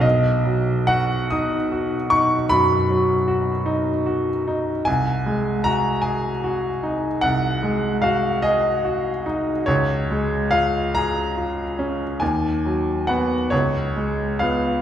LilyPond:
\new Staff \with { instrumentName = "Grand piano" } { \time 12/8 \key b \lydian \tempo 4. = 50 << { dis''4 fis''8 dis'''4 cis'''8 b''2. | gis''4 ais''8 gis''4. fis''4 eis''8 dis''4 r8 | cis''4 eis''8 ais''4. gis''4 fis''8 cis''4 eis''8 | } \\ { b,,8 fis8 fis'8 dis'8 fis'8 dis'8 fis,8 fis8 fis'8 dis'8 fis'8 dis'8 | bis,,8 gis8 fis'8 gis'8 fis'8 dis'8 bis,,8 gis8 fis'8 gis'8 fis'8 dis'8 | cis,8 gis8 eis'8 gis'8 eis'8 cis'8 dis,8 fis8 <b fis'>8 cis,8 gis8 <b eis'>8 | } >> }